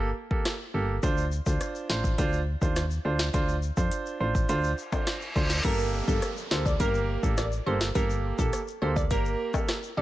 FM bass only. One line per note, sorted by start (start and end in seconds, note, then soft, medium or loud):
0.00 0.13 G1 loud
0.74 0.99 G1 medium
1.03 1.41 D2 loud
1.46 1.59 D2 loud
1.90 2.15 A1 medium
2.18 2.56 D2 loud
2.62 2.99 D#2 medium
3.05 3.30 D2 loud
3.34 3.71 D2 loud
3.77 3.90 F2 medium
4.20 4.45 A1 medium
4.49 4.74 D2 loud
5.36 5.61 D2 loud
5.65 6.02 G1 loud
6.08 6.20 G1 loud
6.51 6.76 D2 loud
6.80 7.18 G1 loud
7.23 7.61 A1 medium
7.67 7.92 G1 medium
7.95 8.33 G1 loud
8.39 8.51 A#1 medium
8.82 9.12 D2 medium
9.11 9.36 G1 loud
9.97 10.02 G1 medium